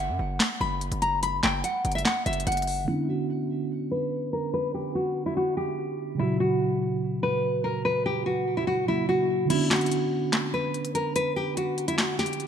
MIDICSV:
0, 0, Header, 1, 5, 480
1, 0, Start_track
1, 0, Key_signature, 2, "minor"
1, 0, Tempo, 413793
1, 1422, Time_signature, 4, 2, 24, 8
1, 14469, End_track
2, 0, Start_track
2, 0, Title_t, "Nylon-string guitar"
2, 0, Program_c, 0, 24
2, 0, Note_on_c, 0, 78, 84
2, 657, Note_off_c, 0, 78, 0
2, 706, Note_on_c, 0, 83, 89
2, 1156, Note_off_c, 0, 83, 0
2, 1183, Note_on_c, 0, 82, 77
2, 1408, Note_off_c, 0, 82, 0
2, 1425, Note_on_c, 0, 83, 95
2, 1649, Note_off_c, 0, 83, 0
2, 1667, Note_on_c, 0, 79, 94
2, 1891, Note_off_c, 0, 79, 0
2, 1900, Note_on_c, 0, 78, 88
2, 2239, Note_off_c, 0, 78, 0
2, 2264, Note_on_c, 0, 76, 81
2, 2374, Note_off_c, 0, 76, 0
2, 2379, Note_on_c, 0, 78, 78
2, 2606, Note_off_c, 0, 78, 0
2, 2621, Note_on_c, 0, 76, 90
2, 2848, Note_off_c, 0, 76, 0
2, 2861, Note_on_c, 0, 78, 75
2, 3313, Note_off_c, 0, 78, 0
2, 3339, Note_on_c, 0, 64, 98
2, 3566, Note_off_c, 0, 64, 0
2, 3577, Note_on_c, 0, 66, 72
2, 4493, Note_off_c, 0, 66, 0
2, 4540, Note_on_c, 0, 71, 86
2, 4993, Note_off_c, 0, 71, 0
2, 5022, Note_on_c, 0, 70, 70
2, 5248, Note_off_c, 0, 70, 0
2, 5263, Note_on_c, 0, 71, 92
2, 5488, Note_off_c, 0, 71, 0
2, 5502, Note_on_c, 0, 67, 76
2, 5728, Note_off_c, 0, 67, 0
2, 5744, Note_on_c, 0, 66, 80
2, 6081, Note_off_c, 0, 66, 0
2, 6102, Note_on_c, 0, 64, 75
2, 6215, Note_off_c, 0, 64, 0
2, 6225, Note_on_c, 0, 66, 79
2, 6450, Note_off_c, 0, 66, 0
2, 6462, Note_on_c, 0, 67, 81
2, 7139, Note_off_c, 0, 67, 0
2, 7185, Note_on_c, 0, 64, 91
2, 7410, Note_off_c, 0, 64, 0
2, 7426, Note_on_c, 0, 66, 76
2, 8338, Note_off_c, 0, 66, 0
2, 8387, Note_on_c, 0, 71, 85
2, 8836, Note_off_c, 0, 71, 0
2, 8863, Note_on_c, 0, 70, 74
2, 9088, Note_off_c, 0, 70, 0
2, 9106, Note_on_c, 0, 71, 90
2, 9330, Note_off_c, 0, 71, 0
2, 9346, Note_on_c, 0, 67, 90
2, 9570, Note_off_c, 0, 67, 0
2, 9581, Note_on_c, 0, 66, 83
2, 9920, Note_off_c, 0, 66, 0
2, 9942, Note_on_c, 0, 64, 80
2, 10055, Note_off_c, 0, 64, 0
2, 10059, Note_on_c, 0, 66, 74
2, 10286, Note_off_c, 0, 66, 0
2, 10304, Note_on_c, 0, 64, 88
2, 10529, Note_off_c, 0, 64, 0
2, 10542, Note_on_c, 0, 66, 73
2, 10993, Note_off_c, 0, 66, 0
2, 11019, Note_on_c, 0, 64, 105
2, 11246, Note_off_c, 0, 64, 0
2, 11260, Note_on_c, 0, 66, 72
2, 12174, Note_off_c, 0, 66, 0
2, 12223, Note_on_c, 0, 71, 88
2, 12674, Note_off_c, 0, 71, 0
2, 12701, Note_on_c, 0, 70, 70
2, 12927, Note_off_c, 0, 70, 0
2, 12943, Note_on_c, 0, 71, 98
2, 13168, Note_off_c, 0, 71, 0
2, 13181, Note_on_c, 0, 67, 77
2, 13408, Note_off_c, 0, 67, 0
2, 13422, Note_on_c, 0, 66, 78
2, 13760, Note_off_c, 0, 66, 0
2, 13780, Note_on_c, 0, 64, 78
2, 13894, Note_off_c, 0, 64, 0
2, 13905, Note_on_c, 0, 66, 80
2, 14129, Note_off_c, 0, 66, 0
2, 14139, Note_on_c, 0, 67, 84
2, 14469, Note_off_c, 0, 67, 0
2, 14469, End_track
3, 0, Start_track
3, 0, Title_t, "Tine electric piano"
3, 0, Program_c, 1, 4
3, 3301, Note_on_c, 1, 50, 63
3, 3332, Note_on_c, 1, 59, 55
3, 3363, Note_on_c, 1, 61, 60
3, 3393, Note_on_c, 1, 62, 68
3, 3562, Control_c, 1, 64, 127
3, 7115, Note_off_c, 1, 50, 0
3, 7131, Note_off_c, 1, 59, 0
3, 7134, Note_on_c, 1, 49, 69
3, 7146, Note_off_c, 1, 61, 0
3, 7161, Note_off_c, 1, 62, 0
3, 7165, Note_on_c, 1, 54, 63
3, 7195, Note_on_c, 1, 46, 58
3, 7200, Control_c, 1, 64, 0
3, 7225, Note_on_c, 1, 66, 70
3, 7428, Control_c, 1, 64, 127
3, 10232, Note_off_c, 1, 49, 0
3, 10247, Note_off_c, 1, 54, 0
3, 10262, Note_off_c, 1, 46, 0
3, 10277, Note_off_c, 1, 66, 0
3, 10283, Note_on_c, 1, 49, 51
3, 10297, Note_on_c, 1, 54, 47
3, 10313, Note_on_c, 1, 58, 48
3, 10328, Note_on_c, 1, 66, 51
3, 10970, Note_on_c, 1, 50, 71
3, 11001, Note_on_c, 1, 59, 63
3, 11012, Note_off_c, 1, 49, 0
3, 11020, Note_off_c, 1, 54, 0
3, 11027, Note_off_c, 1, 58, 0
3, 11031, Note_on_c, 1, 61, 62
3, 11035, Note_off_c, 1, 66, 0
3, 11035, Control_c, 1, 64, 0
3, 11062, Note_on_c, 1, 62, 73
3, 11210, Control_c, 1, 64, 127
3, 14469, Note_off_c, 1, 50, 0
3, 14469, Note_off_c, 1, 59, 0
3, 14469, Note_off_c, 1, 61, 0
3, 14469, Note_off_c, 1, 62, 0
3, 14469, End_track
4, 0, Start_track
4, 0, Title_t, "808-style bass"
4, 0, Program_c, 2, 38
4, 0, Note_on_c, 2, 30, 107
4, 102, Note_on_c, 2, 42, 97
4, 120, Note_off_c, 2, 30, 0
4, 216, Note_off_c, 2, 42, 0
4, 222, Note_on_c, 2, 30, 107
4, 452, Note_off_c, 2, 30, 0
4, 702, Note_on_c, 2, 30, 107
4, 1048, Note_off_c, 2, 30, 0
4, 1062, Note_on_c, 2, 30, 99
4, 1638, Note_off_c, 2, 30, 0
4, 1662, Note_on_c, 2, 30, 102
4, 1892, Note_off_c, 2, 30, 0
4, 2142, Note_on_c, 2, 30, 107
4, 2373, Note_off_c, 2, 30, 0
4, 2621, Note_on_c, 2, 30, 106
4, 2852, Note_off_c, 2, 30, 0
4, 2862, Note_on_c, 2, 30, 101
4, 3323, Note_off_c, 2, 30, 0
4, 14469, End_track
5, 0, Start_track
5, 0, Title_t, "Drums"
5, 462, Note_on_c, 9, 38, 120
5, 463, Note_on_c, 9, 42, 80
5, 472, Note_on_c, 9, 39, 99
5, 578, Note_off_c, 9, 38, 0
5, 579, Note_off_c, 9, 42, 0
5, 588, Note_off_c, 9, 39, 0
5, 943, Note_on_c, 9, 42, 48
5, 1059, Note_off_c, 9, 42, 0
5, 1063, Note_on_c, 9, 42, 77
5, 1179, Note_off_c, 9, 42, 0
5, 1183, Note_on_c, 9, 42, 75
5, 1299, Note_off_c, 9, 42, 0
5, 1423, Note_on_c, 9, 42, 98
5, 1539, Note_off_c, 9, 42, 0
5, 1663, Note_on_c, 9, 38, 99
5, 1672, Note_on_c, 9, 39, 81
5, 1779, Note_off_c, 9, 38, 0
5, 1788, Note_off_c, 9, 39, 0
5, 1903, Note_on_c, 9, 42, 78
5, 2019, Note_off_c, 9, 42, 0
5, 2142, Note_on_c, 9, 42, 50
5, 2222, Note_off_c, 9, 42, 0
5, 2222, Note_on_c, 9, 42, 64
5, 2302, Note_off_c, 9, 42, 0
5, 2302, Note_on_c, 9, 42, 85
5, 2381, Note_on_c, 9, 38, 120
5, 2382, Note_off_c, 9, 42, 0
5, 2382, Note_on_c, 9, 42, 79
5, 2390, Note_on_c, 9, 39, 96
5, 2497, Note_off_c, 9, 38, 0
5, 2498, Note_off_c, 9, 42, 0
5, 2506, Note_off_c, 9, 39, 0
5, 2622, Note_on_c, 9, 42, 60
5, 2702, Note_off_c, 9, 42, 0
5, 2702, Note_on_c, 9, 42, 60
5, 2782, Note_off_c, 9, 42, 0
5, 2782, Note_on_c, 9, 42, 59
5, 2862, Note_off_c, 9, 42, 0
5, 2862, Note_on_c, 9, 42, 64
5, 2922, Note_off_c, 9, 42, 0
5, 2922, Note_on_c, 9, 42, 67
5, 2983, Note_off_c, 9, 42, 0
5, 2983, Note_on_c, 9, 42, 65
5, 3042, Note_off_c, 9, 42, 0
5, 3042, Note_on_c, 9, 42, 64
5, 3102, Note_on_c, 9, 46, 52
5, 3158, Note_off_c, 9, 42, 0
5, 3218, Note_off_c, 9, 46, 0
5, 11022, Note_on_c, 9, 42, 91
5, 11022, Note_on_c, 9, 49, 93
5, 11138, Note_off_c, 9, 42, 0
5, 11138, Note_off_c, 9, 49, 0
5, 11262, Note_on_c, 9, 38, 100
5, 11262, Note_on_c, 9, 42, 38
5, 11271, Note_on_c, 9, 39, 81
5, 11322, Note_off_c, 9, 42, 0
5, 11322, Note_on_c, 9, 42, 48
5, 11378, Note_off_c, 9, 38, 0
5, 11381, Note_off_c, 9, 42, 0
5, 11381, Note_on_c, 9, 42, 56
5, 11387, Note_off_c, 9, 39, 0
5, 11441, Note_off_c, 9, 42, 0
5, 11441, Note_on_c, 9, 42, 65
5, 11502, Note_off_c, 9, 42, 0
5, 11502, Note_on_c, 9, 42, 74
5, 11618, Note_off_c, 9, 42, 0
5, 11981, Note_on_c, 9, 38, 117
5, 11982, Note_on_c, 9, 42, 77
5, 11990, Note_on_c, 9, 39, 92
5, 12097, Note_off_c, 9, 38, 0
5, 12098, Note_off_c, 9, 42, 0
5, 12106, Note_off_c, 9, 39, 0
5, 12462, Note_on_c, 9, 42, 47
5, 12578, Note_off_c, 9, 42, 0
5, 12582, Note_on_c, 9, 42, 76
5, 12698, Note_off_c, 9, 42, 0
5, 12702, Note_on_c, 9, 42, 73
5, 12818, Note_off_c, 9, 42, 0
5, 12942, Note_on_c, 9, 42, 92
5, 13058, Note_off_c, 9, 42, 0
5, 13422, Note_on_c, 9, 42, 73
5, 13538, Note_off_c, 9, 42, 0
5, 13662, Note_on_c, 9, 42, 47
5, 13778, Note_off_c, 9, 42, 0
5, 13782, Note_on_c, 9, 42, 82
5, 13898, Note_off_c, 9, 42, 0
5, 13901, Note_on_c, 9, 38, 114
5, 13902, Note_on_c, 9, 42, 76
5, 13910, Note_on_c, 9, 39, 91
5, 14017, Note_off_c, 9, 38, 0
5, 14018, Note_off_c, 9, 42, 0
5, 14026, Note_off_c, 9, 39, 0
5, 14141, Note_on_c, 9, 38, 64
5, 14142, Note_on_c, 9, 42, 57
5, 14222, Note_off_c, 9, 42, 0
5, 14222, Note_on_c, 9, 42, 58
5, 14257, Note_off_c, 9, 38, 0
5, 14302, Note_off_c, 9, 42, 0
5, 14302, Note_on_c, 9, 42, 57
5, 14382, Note_off_c, 9, 42, 0
5, 14382, Note_on_c, 9, 42, 47
5, 14469, Note_off_c, 9, 42, 0
5, 14469, End_track
0, 0, End_of_file